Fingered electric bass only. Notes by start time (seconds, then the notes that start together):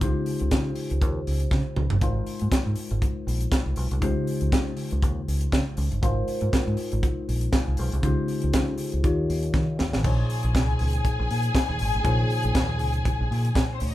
0.02 C#2
0.41 C#2
0.52 C#3
0.91 C#2
1.02 D#2
1.27 C#2
1.52 C#3
1.77 C#2
1.91 G1
2.02 G#1
2.42 G#2
2.66 G#2
2.91 G#1
3.27 A#1
3.66 C2
3.77 B1
3.91 C2
4.03 C#2
4.41 C#2
4.53 C#3
4.92 C#2
5.03 D#2
5.28 C#2
5.53 C#3
5.78 C#2
5.91 G1
6.03 G#1
6.42 G#2
6.67 G#2
6.93 G#1
7.29 A#1
7.68 C2
7.79 B1
7.93 C2
8.04 C#2
8.44 C#2
8.54 C#3
8.93 C#2
9.04 D#2
9.29 D#2
9.54 D#3
9.80 D#2
9.94 A1
10.05 A#1
10.44 A#1
10.55 C2
10.81 C#2
11.19 A#1
11.31 A#2
11.69 D#2
11.81 G#1
11.95 A1
12.05 A#1
12.45 A#1
12.56 D#2
12.81 C#2
13.20 A#1
13.31 A#2
13.82 D2